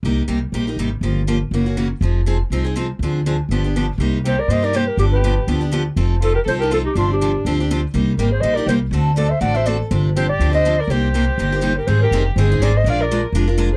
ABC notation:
X:1
M:4/4
L:1/8
Q:"Swing" 1/4=244
K:Cm
V:1 name="Clarinet"
z8 | z8 | z8 | z8 |
z2 c d e d c B | G =B3 z4 | z2 =A B c B A G | F G3 z4 |
z2 B c e d c z | z2 d =e ^f e d z | z2 c d2 e2 d | c6- c B |
c B2 z c2 d e | f d2 z4 c |]
V:2 name="Violin"
z8 | z8 | z8 | z8 |
z2 G B c B G G | D G3 z4 | z2 F G =A G F E | D D3 z4 |
z2 G A c B G z | z2 =A c d c A z | z2 G G2 c2 B | G6- G G |
A G2 z A2 A c | d B2 z4 A |]
V:3 name="Steel-string acoustic guitar"
[C,G,B,EG] z [C,G,B,EG] z [C,G,B,EG] [B,EG] [C,G,B,EG] z | [_D,F,B,FG] z [D,F,B,FG] z [^C,=E,^A,^C^F] [A,CF] [C,E,A,CF] z | [F,CEA] z [F,CEA] z [F,CEA] [CEA] [F,CEA] z | [D,F,CDA] z [D,F,CDA] z [D,F,=B,DG] [B,DG] [D,F,B,DG] z |
[C,G,B,EG] z [C,G,B,EG] z [C,G,B,EG] [B,EG] [C,G,B,EG] z | [D,F,=B,DG] z [D,F,B,DG] z [D,F,B,DG] [B,DG] [D,F,B,DG] z | [F,CE=A] z [F,CEA] z [F,CEA] [CEA] [F,CEA] z | [C,F,CDG] z [C,F,CDG] z [C,F,CDG] [CDG] [C,F,CDG] z |
[C,G,B,EG] z [C,G,B,EG] z [C,G,B,EG] [B,EG] [C,G,B,EG] z | [D,=A,C^F=A] z [D,A,CFA] z [D,A,CFA] [CFA] [D,A,CFA] z | [C,F,CDG] z [C,F,CDG] z [C,F,CDG] [CDG] [C,F,CDG] z | [C,G,B,EG] z [C,G,B,EG] z [C,G,B,EG] [B,EG] [C,G,B,EG] z |
[E,G,CEA] z [E,G,CEA] z [E,G,CEA] [CEA] [E,G,CEA] z | [F,A,DFB] z [F,A,DFB] z [F,A,DFB] [DFB] [F,A,DFB] z |]
V:4 name="Upright bass" clef=bass
C,,2 C,,2 B,,,2 A,,,2 | G,,,4 ^F,,,4 | F,,,4 C,,4 | D,,4 G,,,4 |
C,,4 G,,4 | G,,,4 D,,4 | F,,,4 C,,4 | G,,,4 D,,4 |
C,,2 A,,,2 B,,,2 C,,2 | D,,4 =A,,,4 | G,,,4 D,,4 | C,,4 G,,,4 |
A,,,2 F,,,2 G,,,2 A,,,2 | B,,,4 F,,,4 |]